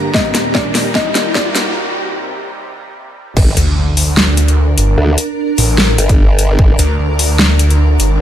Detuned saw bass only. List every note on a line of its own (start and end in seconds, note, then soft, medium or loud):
3.57 3.75 D2 medium
3.77 4.16 D2 loud
4.17 4.76 D2 loud
4.78 4.96 G1 loud
5.58 5.97 A1 loud
6.79 6.98 D2 medium
6.99 7.38 D2 loud
7.39 7.98 D2 loud
8.00 8.18 G1 loud